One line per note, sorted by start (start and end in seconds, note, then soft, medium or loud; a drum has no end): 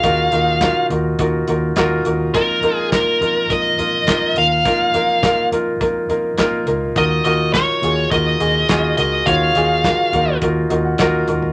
0.00 0.27 D#2 medium
0.00 0.86 D#3 medium
0.00 0.03 D#4 medium
0.00 0.26 D#4 medium
0.00 0.03 F4 medium
0.00 0.26 F4 medium
0.00 0.04 F#4 medium
0.00 0.27 F#4 medium
0.00 2.37 G#4 medium
0.00 0.04 A#4 medium
0.00 2.37 C#5 medium
0.00 0.86 F5 medium
0.00 kick loud
0.00 closed hi-hat medium
0.04 0.27 A#4 medium
0.32 0.68 D#2 medium
0.32 0.55 D#4 medium
0.32 0.55 F4 medium
0.32 0.56 F#4 medium
0.32 0.56 A#4 medium
0.32 closed hi-hat medium
0.61 0.84 D#4 medium
0.61 0.84 F4 medium
0.61 0.85 F#4 medium
0.61 0.85 A#4 medium
0.61 kick medium
0.61 snare medium
0.61 clap medium
0.61 closed hi-hat medium
0.90 1.14 D#2 loud
0.90 1.13 D#4 medium
0.90 1.13 F4 medium
0.90 1.13 F#4 medium
0.90 1.14 A#4 medium
0.90 closed hi-hat medium
1.19 1.43 D#2 medium
1.19 1.42 D#4 medium
1.19 1.42 F4 medium
1.19 1.42 F#4 medium
1.19 1.43 A#4 medium
1.19 kick loud
1.19 closed hi-hat medium
1.48 1.72 D#2 medium
1.48 1.71 D#4 medium
1.48 1.71 F4 medium
1.48 1.71 F#4 medium
1.48 1.72 A#4 medium
1.48 closed hi-hat medium
1.76 2.00 D#2 medium
1.76 2.00 D#4 loud
1.76 2.00 F4 medium
1.76 2.00 F#4 loud
1.76 2.01 A#4 loud
1.76 kick medium
1.76 snare medium
1.76 clap medium
1.76 closed hi-hat medium
2.05 2.30 D#2 medium
2.05 2.28 D#4 medium
2.05 2.29 F4 medium
2.05 2.29 F#4 medium
2.05 2.29 A#4 medium
2.05 closed hi-hat medium
2.34 2.58 F2 loud
2.34 2.57 A#3 medium
2.34 2.58 D#4 medium
2.34 2.58 F4 medium
2.34 2.77 A#4 medium
2.34 2.58 A#4 medium
2.34 kick loud
2.34 closed hi-hat medium
2.63 2.99 F2 medium
2.63 2.86 A#3 medium
2.63 2.86 D#4 medium
2.63 2.87 F4 medium
2.63 2.87 A#4 medium
2.63 closed hi-hat medium
2.77 2.88 G#4 medium
2.92 3.15 A#3 medium
2.92 3.15 D#4 medium
2.92 3.16 F4 medium
2.92 3.52 A#4 medium
2.92 3.16 A#4 medium
2.92 kick medium
2.92 snare medium
2.92 clap medium
2.92 closed hi-hat medium
3.20 3.45 F2 medium
3.20 3.44 A#3 medium
3.20 3.44 D#4 medium
3.20 3.44 F4 medium
3.20 3.44 A#4 medium
3.20 closed hi-hat medium
3.49 3.74 F2 medium
3.49 3.72 A#3 medium
3.49 3.73 D#4 medium
3.49 3.73 F4 medium
3.49 3.73 A#4 medium
3.49 4.38 D#5 medium
3.49 kick medium
3.49 closed hi-hat medium
3.78 4.02 F2 medium
3.78 4.01 A#3 medium
3.78 4.02 D#4 medium
3.78 4.02 F4 medium
3.78 4.02 A#4 medium
3.78 closed hi-hat medium
4.07 4.31 F2 medium
4.07 4.30 A#3 medium
4.07 4.30 D#4 medium
4.07 4.31 F4 medium
4.07 4.31 A#4 medium
4.07 kick medium
4.07 snare medium
4.07 clap medium
4.07 closed hi-hat medium
4.36 4.65 D#2 medium
4.36 4.59 A#3 medium
4.36 4.59 D#4 soft
4.36 4.60 F4 medium
4.36 4.60 A#4 medium
4.36 5.49 F5 medium
4.36 closed hi-hat medium
4.65 4.89 F2 medium
4.65 4.88 A#3 medium
4.65 4.88 D#4 medium
4.65 4.89 F4 medium
4.65 4.89 A#4 loud
4.65 kick loud
4.65 closed hi-hat medium
4.94 5.30 F2 medium
4.94 5.17 A#3 medium
4.94 5.17 D#4 medium
4.94 5.18 F4 medium
4.94 5.18 A#4 medium
4.94 closed hi-hat medium
5.23 5.46 A#3 medium
5.23 5.46 D#4 medium
5.23 5.46 F4 medium
5.23 5.47 A#4 medium
5.23 kick medium
5.23 snare medium
5.23 clap medium
5.23 closed hi-hat medium
5.52 5.75 F2 medium
5.52 5.75 A#3 medium
5.52 5.75 D#4 medium
5.52 5.75 F4 medium
5.52 5.75 A#4 medium
5.52 closed hi-hat medium
5.80 6.04 F2 medium
5.80 6.03 A#3 medium
5.80 6.04 D#4 medium
5.80 6.04 F4 medium
5.80 6.04 A#4 medium
5.80 kick loud
5.80 closed hi-hat medium
6.09 6.33 F2 medium
6.09 6.32 A#3 medium
6.09 6.32 D#4 medium
6.09 6.33 F4 medium
6.09 6.33 A#4 medium
6.09 closed hi-hat medium
6.38 6.62 F2 medium
6.38 6.61 A#3 loud
6.38 6.61 D#4 medium
6.38 6.61 F4 medium
6.38 6.62 A#4 loud
6.38 kick medium
6.38 snare loud
6.38 clap medium
6.38 closed hi-hat medium
6.66 6.91 C#2 medium
6.66 6.90 A#3 medium
6.66 6.90 D#4 medium
6.66 6.90 F4 medium
6.66 6.90 A#4 medium
6.66 closed hi-hat medium
6.95 7.20 D#2 medium
6.95 7.79 D#3 medium
6.95 7.19 D#4 medium
6.95 7.19 F4 medium
6.95 7.19 F#4 medium
6.95 7.19 A#4 medium
6.95 7.24 D#5 medium
6.95 kick loud
6.95 closed hi-hat medium
7.24 7.60 D#2 medium
7.24 7.47 D#4 medium
7.24 7.48 F4 medium
7.24 7.48 F#4 medium
7.24 7.48 A#4 medium
7.24 7.53 D#5 medium
7.24 closed hi-hat medium
7.53 7.76 D#4 medium
7.53 7.77 F4 medium
7.53 7.77 F#4 medium
7.53 7.77 A#4 medium
7.53 8.11 C#5 medium
7.53 kick loud
7.53 snare medium
7.53 clap medium
7.53 closed hi-hat medium
7.82 8.06 D#2 medium
7.82 8.05 D#4 medium
7.82 8.05 F4 medium
7.82 8.06 F#4 medium
7.82 8.06 G#4 medium
7.82 closed hi-hat medium
8.11 8.35 D#2 medium
8.11 8.34 D#4 medium
8.11 8.34 F4 medium
8.11 8.34 F#4 medium
8.11 8.35 A#4 medium
8.11 8.96 D#5 medium
8.11 kick loud
8.11 closed hi-hat medium
8.39 8.63 D#2 medium
8.39 8.63 D#4 medium
8.39 8.63 F4 medium
8.39 8.63 F#4 medium
8.39 8.63 G#4 medium
8.39 closed hi-hat medium
8.69 8.93 D#2 medium
8.69 8.92 D#4 medium
8.69 8.92 F4 medium
8.69 8.92 F#4 medium
8.69 8.92 G#4 medium
8.69 kick medium
8.69 snare loud
8.69 clap medium
8.69 closed hi-hat medium
8.97 9.21 C#2 medium
8.97 9.20 D#4 medium
8.97 9.20 F4 soft
8.97 9.21 F#4 medium
8.97 9.21 A#4 medium
8.97 9.27 D#5 medium
8.97 closed hi-hat medium
9.26 9.50 D#2 loud
9.26 10.09 D#3 medium
9.26 9.49 D#4 medium
9.26 9.49 F4 medium
9.26 9.50 F#4 medium
9.26 9.50 C#5 medium
9.26 10.38 F5 medium
9.26 kick loud
9.26 closed hi-hat medium
9.55 9.91 D#2 medium
9.55 9.78 D#4 medium
9.55 9.79 F4 medium
9.55 9.79 F#4 medium
9.55 9.79 G#4 medium
9.55 closed hi-hat medium
9.84 10.07 D#4 medium
9.84 10.07 F4 medium
9.84 10.08 F#4 medium
9.84 10.08 A#4 medium
9.84 kick loud
9.84 snare medium
9.84 clap medium
9.84 closed hi-hat medium
10.12 10.36 D#2 medium
10.12 10.36 D#4 medium
10.12 10.36 F4 medium
10.12 10.36 F#4 medium
10.12 10.37 A#4 medium
10.12 closed hi-hat medium
10.12 floor tom medium
10.42 10.65 D#2 medium
10.42 10.65 D#4 medium
10.42 10.65 F4 medium
10.42 10.65 F#4 medium
10.42 10.65 A#4 medium
10.42 kick loud
10.42 closed hi-hat medium
10.70 10.94 D#2 medium
10.70 10.93 D#4 medium
10.70 10.93 F4 medium
10.70 10.94 F#4 medium
10.70 10.94 A#4 medium
10.70 10.84 D#5 medium
10.70 closed hi-hat medium
10.85 10.98 F#5 medium
10.98 11.23 D#2 medium
10.98 11.22 D#4 loud
10.98 11.22 F4 medium
10.98 11.23 F#4 loud
10.98 11.23 A#4 loud
10.98 11.53 A#5 medium
10.98 kick loud
10.98 snare loud
10.98 clap medium
10.98 closed hi-hat medium
11.28 11.52 D#2 medium
11.28 11.51 D#4 medium
11.28 11.51 F4 medium
11.28 11.51 F#4 medium
11.28 11.51 A#4 medium
11.28 closed hi-hat medium
11.28 floor tom medium
11.43 floor tom soft